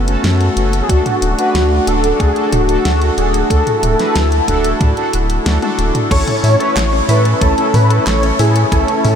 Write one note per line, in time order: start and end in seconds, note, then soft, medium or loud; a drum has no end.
0.00 0.17 F#1 loud
0.00 6.07 A3 medium
0.00 0.87 B3 medium
0.00 6.07 F#4 medium
0.08 0.53 C#4 medium
0.08 0.53 F#4 medium
0.08 0.53 A4 loud
0.08 closed hi-hat medium
0.24 0.49 F#2 loud
0.24 snare loud
0.24 closed hi-hat medium
0.41 closed hi-hat soft
0.57 0.82 F#1 loud
0.57 0.86 C#4 medium
0.57 0.86 F#4 medium
0.57 0.86 A4 medium
0.57 closed hi-hat medium
0.73 closed hi-hat soft
0.82 0.91 G#4 medium
0.89 1.02 D2 medium
0.89 3.48 D4 medium
0.89 1.35 D4 medium
0.89 1.89 F#4 loud
0.89 1.35 F#4 medium
0.89 1.35 A4 medium
0.89 kick loud
0.89 closed hi-hat medium
1.06 closed hi-hat soft
1.06 mid tom medium
1.22 1.35 D1 medium
1.22 closed hi-hat medium
1.39 1.57 D4 medium
1.39 1.57 F#4 medium
1.39 1.57 B4 loud
1.39 closed hi-hat medium
1.55 1.80 D2 medium
1.55 snare loud
1.55 closed hi-hat medium
1.87 2.13 D1 medium
1.87 2.32 D4 loud
1.87 2.32 F#4 medium
1.87 2.19 A4 loud
1.87 2.32 A4 loud
1.87 closed hi-hat medium
2.04 closed hi-hat soft
2.19 2.33 D2 medium
2.19 2.54 G#4 loud
2.19 kick loud
2.19 closed hi-hat medium
2.36 2.55 D4 loud
2.36 2.55 F#4 medium
2.36 2.55 A4 loud
2.36 closed hi-hat soft
2.52 2.78 D1 loud
2.52 2.84 F#4 loud
2.52 closed hi-hat medium
2.52 mid tom medium
2.69 3.14 D4 medium
2.69 3.14 F#4 medium
2.69 3.14 A4 loud
2.69 closed hi-hat soft
2.85 3.11 D2 loud
2.85 3.19 F#4 loud
2.85 snare loud
2.85 closed hi-hat medium
3.02 closed hi-hat soft
3.18 3.43 D1 loud
3.18 3.47 D4 medium
3.18 3.47 F#4 medium
3.18 3.49 G#4 loud
3.18 3.47 A4 medium
3.18 closed hi-hat medium
3.34 closed hi-hat medium
3.50 3.63 D2 loud
3.50 3.96 D4 medium
3.50 6.09 E4 medium
3.50 3.96 F#4 medium
3.50 5.42 A4 loud
3.50 3.95 A4 medium
3.50 kick loud
3.50 closed hi-hat medium
3.67 closed hi-hat soft
3.67 mid tom medium
3.83 3.96 D1 loud
3.83 closed hi-hat medium
3.83 mid tom medium
3.99 4.18 D4 medium
3.99 4.18 F#4 medium
3.99 4.18 B4 loud
3.99 snare soft
3.99 closed hi-hat medium
4.16 4.41 D2 medium
4.16 snare loud
4.16 closed hi-hat medium
4.32 closed hi-hat soft
4.48 4.73 D1 medium
4.48 4.93 D4 loud
4.48 4.93 F#4 medium
4.48 4.93 A4 loud
4.48 kick medium
4.48 closed hi-hat medium
4.64 closed hi-hat medium
4.81 4.93 D2 loud
4.81 kick loud
4.81 closed hi-hat medium
4.81 mid tom medium
4.97 5.16 D4 medium
4.97 5.16 F#4 medium
4.97 5.16 A4 loud
4.97 closed hi-hat soft
5.13 5.39 D1 loud
5.13 closed hi-hat medium
5.30 closed hi-hat medium
5.46 5.59 D2 loud
5.46 5.58 D4 medium
5.46 5.58 F#4 medium
5.46 5.58 A4 medium
5.46 snare loud
5.46 closed hi-hat medium
5.46 high tom medium
5.62 6.07 D4 loud
5.62 6.07 F#4 medium
5.62 6.07 A4 loud
5.62 closed hi-hat soft
5.62 high tom medium
5.79 5.91 D1 loud
5.79 closed hi-hat medium
5.95 closed hi-hat medium
5.95 mid tom medium
6.11 6.24 A1 loud
6.11 6.27 A3 medium
6.11 9.15 A3 medium
6.11 6.56 C#4 medium
6.11 9.15 C#4 medium
6.11 6.56 E4 medium
6.11 9.15 E4 medium
6.11 6.56 A4 medium
6.11 7.05 C#5 loud
6.11 7.05 C#6 loud
6.11 kick loud
6.11 closed hi-hat medium
6.11 crash loud
6.27 6.34 C#4 medium
6.27 closed hi-hat soft
6.27 mid tom medium
6.44 6.56 A2 loud
6.44 6.50 E4 medium
6.44 open hi-hat medium
6.60 6.79 C#4 medium
6.60 6.79 E4 medium
6.60 6.76 A4 medium
6.60 6.79 B4 loud
6.60 closed hi-hat medium
6.76 7.02 A1 medium
6.76 6.92 A3 medium
6.76 snare loud
6.76 clap loud
6.76 closed hi-hat medium
6.93 6.99 C#4 medium
7.09 7.34 A2 medium
7.09 7.54 C#4 loud
7.09 7.54 E4 medium
7.09 7.15 E4 medium
7.09 7.54 A4 loud
7.09 7.40 B4 loud
7.09 7.39 B5 loud
7.09 open hi-hat medium
7.25 7.41 A4 medium
7.25 closed hi-hat medium
7.41 7.54 A1 loud
7.41 7.57 A3 medium
7.41 7.76 A4 loud
7.41 7.72 A5 loud
7.41 kick loud
7.41 closed hi-hat medium
7.58 7.76 C#4 loud
7.58 7.65 C#4 medium
7.58 7.77 E4 medium
7.58 7.77 A4 loud
7.58 closed hi-hat soft
7.74 7.99 A2 loud
7.74 7.81 E4 medium
7.74 8.09 B4 loud
7.74 8.05 B5 medium
7.74 mid tom medium
7.74 open hi-hat medium
7.90 8.36 C#4 loud
7.90 8.36 E4 medium
7.90 8.06 A4 medium
7.90 8.36 A4 loud
7.90 closed hi-hat medium
8.07 8.32 A1 loud
8.07 8.22 A3 medium
8.07 8.41 C#5 loud
8.07 8.37 C#6 loud
8.07 snare loud
8.07 clap loud
8.07 closed hi-hat medium
8.23 8.30 C#4 medium
8.23 closed hi-hat soft
8.39 8.65 A2 loud
8.39 8.68 C#4 medium
8.39 8.46 E4 medium
8.39 8.68 E4 medium
8.39 8.71 G#4 medium
8.39 8.68 A4 medium
8.39 8.70 G#5 medium
8.39 open hi-hat medium
8.56 8.71 A4 medium
8.56 closed hi-hat medium
8.72 8.85 A1 loud
8.72 8.88 A3 medium
8.72 9.15 C#4 medium
8.72 9.15 E4 medium
8.72 9.15 A4 loud
8.72 9.15 A4 medium
8.72 9.15 A5 loud
8.72 kick loud
8.72 closed hi-hat medium
8.88 8.95 C#4 medium
8.88 closed hi-hat soft
9.05 9.15 A2 loud
9.05 9.11 E4 medium
9.05 mid tom medium
9.05 open hi-hat medium